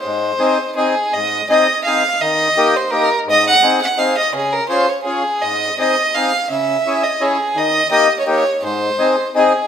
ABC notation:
X:1
M:3/4
L:1/16
Q:"Swing" 1/4=168
K:Ab
V:1 name="Fiddle"
c8 A4 | e4 e4 f4 | e6 c2 B3 z | e2 _g4 g2 f2 e2 |
A2 B2 c2 d2 A4 | e4 e4 f4 | _f6 e2 A4 | e4 e3 d d4 |
c8 A4 |]
V:2 name="Accordion"
A,,4 [CEA]2 z2 [CEA]2 z2 | A,,4 [CEA]2 z2 [CEA]2 z2 | E,4 [B,EG]2 z2 [B,EG]2 z2 | A,,4 [CEA]2 z2 [CEA]2 z2 |
D,4 [DFA]2 z2 [DFA]2 z2 | A,,4 [CEA]2 z2 [CEA]2 z2 | D,4 [D_FA]2 z2 [DFA]2 z2 | E,4 [B,EG]2 z2 [B,EG]2 z2 |
A,,4 [CEA]2 z2 [CEA]2 z2 |]